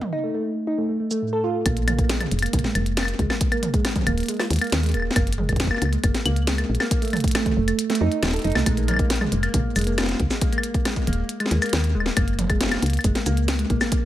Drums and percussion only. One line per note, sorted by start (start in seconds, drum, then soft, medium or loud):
0.01 mid tom medium
1.11 shaker medium
1.66 kick loud
1.66 closed hi-hat loud
1.66 claves medium
1.77 closed hi-hat soft
1.88 closed hi-hat medium
1.88 mid tom medium
1.88 claves medium
1.99 kick loud
1.99 closed hi-hat soft
2.10 snare loud
2.10 closed hi-hat loud
2.21 closed hi-hat soft
2.21 mid tom medium
2.21 claves medium
2.31 closed hi-hat medium
2.39 closed hi-hat medium
2.42 closed hi-hat soft
2.42 claves medium
2.46 closed hi-hat soft
2.53 kick loud
2.53 closed hi-hat loud
2.53 mid tom medium
2.59 closed hi-hat soft
2.64 snare medium
2.75 closed hi-hat medium
2.75 claves medium
2.86 closed hi-hat soft
2.97 snare loud
2.97 closed hi-hat medium
2.97 claves soft
3.00 claves soft
3.03 claves medium
3.05 closed hi-hat soft
3.05 claves medium
3.19 kick medium
3.19 closed hi-hat soft
3.30 snare medium
3.30 claves medium
3.41 kick loud
3.41 closed hi-hat loud
3.52 closed hi-hat soft
3.52 claves medium
3.63 closed hi-hat medium
3.63 mid tom medium
3.74 kick loud
3.74 closed hi-hat soft
3.85 snare loud
3.85 closed hi-hat loud
3.85 claves medium
3.96 kick medium
3.96 closed hi-hat soft
3.96 mid tom medium
3.98 mid tom medium
4.01 mid tom medium
4.04 closed hi-hat medium
4.04 mid tom soft
4.07 mid tom soft
4.07 claves medium
4.09 mid tom soft
4.12 mid tom soft
4.18 closed hi-hat soft
4.20 closed hi-hat soft
4.23 closed hi-hat soft
4.26 closed hi-hat soft
4.29 closed hi-hat loud
4.31 closed hi-hat soft
4.37 snare medium
4.37 closed hi-hat soft
4.37 claves medium
4.51 closed hi-hat medium
4.53 closed hi-hat medium
4.56 closed hi-hat soft
4.59 closed hi-hat soft
4.61 closed hi-hat soft
4.61 claves medium
4.64 closed hi-hat soft
4.67 closed hi-hat soft
4.70 snare loud
4.70 closed hi-hat soft
4.72 closed hi-hat loud
4.83 closed hi-hat soft
4.86 closed hi-hat soft
4.89 closed hi-hat soft
4.92 closed hi-hat soft
4.94 closed hi-hat soft
4.94 claves soft
4.97 claves soft
5.00 claves soft
5.02 claves soft
5.11 snare medium
5.16 kick loud
5.16 closed hi-hat loud
5.16 claves medium
5.27 closed hi-hat soft
5.33 closed hi-hat medium
5.38 mid tom medium
5.49 kick medium
5.49 closed hi-hat soft
5.49 claves medium
5.53 kick medium
5.56 kick medium
5.56 snare loud
5.56 closed hi-hat soft
5.60 kick medium
5.60 closed hi-hat medium
5.64 kick medium
5.67 kick loud
5.67 claves medium
5.74 claves medium
5.78 closed hi-hat medium
5.78 claves medium
5.82 claves soft
5.85 claves soft
5.89 closed hi-hat soft
5.89 claves soft
6.04 kick loud
6.04 closed hi-hat loud
6.04 claves medium
6.15 snare medium
6.15 closed hi-hat soft
6.26 closed hi-hat medium
6.26 claves medium
6.36 closed hi-hat soft
6.47 snare loud
6.47 closed hi-hat medium
6.58 closed hi-hat soft
6.58 claves medium
6.75 closed hi-hat soft
6.80 snare medium
6.80 claves medium
6.91 kick loud
6.91 closed hi-hat loud
7.02 closed hi-hat soft
7.05 closed hi-hat soft
7.08 closed hi-hat soft
7.10 closed hi-hat soft
7.13 closed hi-hat soft
7.13 mid tom medium
7.13 claves medium
7.16 closed hi-hat soft
7.19 closed hi-hat soft
7.20 closed hi-hat soft
7.24 kick loud
7.24 closed hi-hat soft
7.28 closed hi-hat medium
7.31 snare loud
7.31 closed hi-hat medium
7.35 closed hi-hat medium
7.35 claves medium
7.46 kick medium
7.46 closed hi-hat soft
7.46 mid tom medium
7.68 closed hi-hat medium
7.68 claves soft
7.79 closed hi-hat medium
7.90 snare medium
7.90 closed hi-hat soft
7.95 closed hi-hat medium
8.12 closed hi-hat soft
8.23 snare loud
8.23 closed hi-hat medium
8.23 claves soft
8.25 snare loud
8.28 snare medium
8.31 snare medium
8.31 closed hi-hat soft
8.36 closed hi-hat soft
8.39 closed hi-hat soft
8.42 closed hi-hat soft
8.44 closed hi-hat soft
8.47 closed hi-hat soft
8.50 closed hi-hat soft
8.52 snare medium
8.52 closed hi-hat soft
8.52 claves medium
8.59 closed hi-hat soft
8.66 kick loud
8.66 closed hi-hat medium
8.66 claves medium
8.77 closed hi-hat soft
8.88 closed hi-hat medium
8.88 mid tom medium
8.88 claves soft
8.91 mid tom medium
8.91 claves soft
8.94 mid tom medium
8.94 claves medium
8.96 kick loud
8.96 closed hi-hat soft
8.96 mid tom medium
8.96 claves medium
9.10 snare loud
9.10 closed hi-hat medium
9.16 closed hi-hat soft
9.21 mid tom medium
9.21 claves medium
9.32 closed hi-hat medium
9.43 closed hi-hat soft
9.43 claves medium
9.54 kick loud
9.54 closed hi-hat medium
9.54 mid tom medium
9.76 closed hi-hat medium
9.76 claves medium
9.76 shaker medium
9.79 closed hi-hat medium
9.81 closed hi-hat soft
9.84 closed hi-hat soft
9.87 closed hi-hat soft
9.98 snare loud
9.98 closed hi-hat medium
9.98 claves medium
10.01 snare medium
10.03 snare medium
10.06 snare medium
10.09 snare soft
10.09 closed hi-hat soft
10.11 snare soft
10.14 snare soft
10.17 kick medium
10.17 snare soft
10.17 closed hi-hat soft
10.31 snare medium
10.31 shaker medium
10.41 kick loud
10.41 closed hi-hat medium
10.53 closed hi-hat soft
10.58 claves medium
10.63 closed hi-hat medium
10.74 kick loud
10.74 closed hi-hat soft
10.85 snare loud
10.85 closed hi-hat medium
10.85 claves medium
10.96 kick medium
10.96 closed hi-hat soft
11.07 closed hi-hat medium
11.13 closed hi-hat soft
11.29 closed hi-hat medium
11.40 closed hi-hat soft
11.40 claves medium
11.46 snare medium
11.51 closed hi-hat medium
11.62 closed hi-hat soft
11.62 claves medium
11.62 shaker medium
11.66 closed hi-hat soft
11.69 snare loud
11.69 closed hi-hat soft
11.73 closed hi-hat medium
11.77 closed hi-hat soft
11.80 closed hi-hat soft
11.84 closed hi-hat soft
12.00 claves medium
12.06 snare medium
12.17 kick loud
12.17 closed hi-hat loud
12.17 claves medium
12.28 closed hi-hat soft
12.39 closed hi-hat medium
12.39 mid tom loud
12.41 mid tom medium
12.44 mid tom medium
12.47 kick loud
12.47 closed hi-hat soft
12.47 mid tom medium
12.47 claves medium
12.61 snare loud
12.61 closed hi-hat medium
12.63 snare medium
12.66 snare medium
12.69 snare medium
12.72 snare soft
12.72 closed hi-hat soft
12.72 claves medium
12.74 snare soft
12.77 snare soft
12.80 snare soft
12.80 closed hi-hat medium
12.86 closed hi-hat medium
12.90 closed hi-hat soft
12.93 closed hi-hat soft
12.97 closed hi-hat soft
12.97 claves medium
13.01 closed hi-hat soft
13.04 kick loud
13.04 closed hi-hat medium
13.15 snare medium
13.15 closed hi-hat soft
13.26 closed hi-hat medium
13.26 shaker medium
13.37 closed hi-hat soft
13.48 snare loud
13.48 closed hi-hat medium
13.59 closed hi-hat soft
13.70 kick medium
13.70 closed hi-hat soft
13.81 snare medium
13.81 claves medium
13.81 shaker medium
13.92 kick loud
13.92 closed hi-hat loud